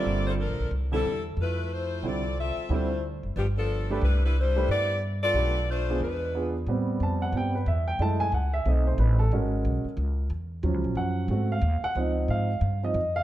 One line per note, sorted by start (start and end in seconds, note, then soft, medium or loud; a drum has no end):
0.00 0.36 D3 medium
0.00 0.36 G3 medium
0.00 0.27 A#3 medium
0.00 0.36 C4 medium
0.00 0.27 F4 medium
0.00 0.36 F4 medium
0.00 0.27 A4 medium
0.00 0.27 D5 medium
0.05 0.46 G1 medium
0.27 0.33 A#3 medium
0.27 0.33 F4 medium
0.27 0.33 A4 medium
0.27 0.32 C5 medium
0.40 0.70 F3 medium
0.40 0.70 D4 medium
0.40 0.70 A4 medium
0.40 0.70 A#4 medium
0.49 0.59 A#1 medium
0.60 0.70 B1 medium
0.71 1.02 C2 medium
0.92 1.03 D3 medium
0.92 1.03 G3 soft
0.92 1.23 G3 medium
0.92 1.04 C4 soft
0.92 1.24 D4 medium
0.92 1.23 E4 medium
0.92 1.04 E4 medium
0.92 1.23 A4 medium
1.04 1.35 E2 medium
1.37 2.00 F2 medium
1.41 1.71 A3 medium
1.41 1.70 E4 medium
1.41 1.70 F4 medium
1.41 1.70 B4 medium
1.73 2.05 A3 medium
1.73 2.05 E4 medium
1.73 2.05 F4 medium
1.73 2.05 C5 medium
2.03 2.53 C2 medium
2.03 2.22 D3 soft
2.03 2.22 G3 soft
2.03 2.22 C4 soft
2.03 2.23 E4 medium
2.03 2.38 F4 medium
2.03 2.38 A4 medium
2.03 2.38 D5 medium
2.07 2.38 C4 medium
2.40 2.69 C4 medium
2.40 2.69 F4 medium
2.40 2.69 A4 medium
2.40 2.69 E5 medium
2.57 muted upright bass stroke soft
2.69 3.19 D2 medium
2.69 2.88 D3 medium
2.69 2.88 G3 medium
2.69 3.04 A3 medium
2.69 2.89 C4 medium
2.69 2.89 E4 medium
2.69 3.04 E4 medium
2.69 3.04 F4 medium
2.69 3.04 C5 medium
3.23 3.35 F#1 medium
3.36 3.99 G1 medium
3.36 3.46 F3 medium
3.36 3.46 B3 medium
3.36 3.46 D4 medium
3.36 3.46 G4 medium
3.57 3.88 F3 medium
3.57 3.88 B3 medium
3.57 3.88 D4 medium
3.57 3.88 A4 medium
3.90 4.03 F3 medium
3.90 4.01 A3 medium
3.90 4.03 B3 medium
3.90 4.02 D4 medium
3.90 4.02 G4 medium
3.90 4.03 A4 medium
3.90 4.02 B4 medium
4.01 4.65 C2 medium
4.01 4.22 G3 medium
4.01 4.22 D4 medium
4.01 4.22 E4 medium
4.01 4.22 B4 medium
4.25 4.36 G3 medium
4.25 4.36 D4 medium
4.25 4.36 E4 medium
4.25 4.36 B4 medium
4.39 4.71 G3 medium
4.39 4.70 D4 medium
4.39 4.70 E4 medium
4.39 4.71 C5 medium
4.56 4.67 A3 medium
4.56 4.68 D4 medium
4.56 4.68 G4 medium
4.56 4.68 B4 medium
4.68 5.31 G2 medium
4.68 5.00 B3 medium
4.68 5.01 E4 medium
4.68 5.01 G4 medium
4.68 5.00 D5 loud
5.22 5.65 B3 medium
5.22 5.65 F4 medium
5.22 5.65 A4 medium
5.22 5.65 D5 loud
5.34 5.97 B1 medium
5.34 5.53 A3 medium
5.34 5.54 D4 soft
5.34 5.53 G4 medium
5.34 5.54 B4 medium
5.70 6.00 A3 medium
5.70 6.00 D4 medium
5.70 6.00 F4 medium
5.70 6.00 C5 medium
5.89 6.00 B3 medium
5.89 6.00 D4 medium
5.89 6.01 F4 medium
5.89 6.01 G#4 medium
6.00 6.63 E2 medium
6.00 6.52 G#3 medium
6.00 6.52 D4 medium
6.00 6.51 F4 medium
6.00 6.52 B4 medium
6.35 6.53 B3 medium
6.35 6.53 D4 soft
6.35 6.53 F4 soft
6.35 6.53 G#4 medium
6.66 6.99 A2 medium
6.66 7.34 G3 medium
6.66 7.34 B3 soft
6.66 7.34 C4 medium
7.00 7.32 F2 medium
7.00 7.21 A5 medium
7.22 7.34 F#5 medium
7.32 7.65 G2 medium
7.32 7.53 G3 soft
7.32 7.53 B3 soft
7.32 7.53 C4 soft
7.37 7.55 G5 medium
7.55 7.67 B4 medium
7.66 7.98 E2 medium
7.66 7.87 E5 medium
7.88 7.99 G5 medium
7.99 8.31 F#2 medium
7.99 8.24 G#3 soft
7.99 8.24 A3 soft
7.99 8.25 E4 medium
7.99 8.20 A5 medium
8.20 8.32 G#5 medium
8.32 8.64 C#2 medium
8.32 8.53 F#5 medium
8.54 8.66 E5 medium
8.66 8.97 B1 medium
8.66 9.16 A3 soft
8.66 9.17 C4 soft
8.66 9.17 D#4 medium
8.66 8.87 D#5 medium
8.87 8.99 C5 medium
8.98 9.30 A1 loud
8.98 9.19 B4 medium
9.19 9.31 A4 medium
9.33 9.83 G#3 medium
9.33 9.83 C#4 soft
9.33 9.83 F#4 medium
9.33 10.28 A#4 medium
9.65 9.84 B1 medium
9.84 muted upright bass stroke soft
9.97 10.29 C#2 medium
10.30 10.62 E2 medium
10.63 10.74 D#2 medium
10.63 11.27 F3 medium
10.63 11.27 F#3 medium
10.63 11.27 C#4 soft
10.74 10.84 C#2 medium
10.84 10.95 A#1 medium
10.95 11.28 F#2 medium
10.95 11.47 F#5 medium
11.28 11.61 G#2 medium
11.28 11.54 A3 soft
11.28 11.55 C4 soft
11.28 11.55 F#4 medium
11.52 11.82 F5 medium
11.62 11.81 D#2 loud
11.82 11.96 F#5 medium
11.82 muted upright bass stroke soft
11.95 12.28 C#2 medium
11.95 12.47 F3 medium
11.95 12.47 C4 soft
11.95 12.48 D#4 medium
12.28 12.60 G#2 medium
12.28 12.80 F5 medium
12.61 12.94 G2 medium
12.83 12.95 F3 soft
12.83 12.95 C4 soft
12.83 12.95 D#4 soft
12.83 13.15 D#5 medium
12.94 13.23 F2 medium
13.16 13.23 F5 medium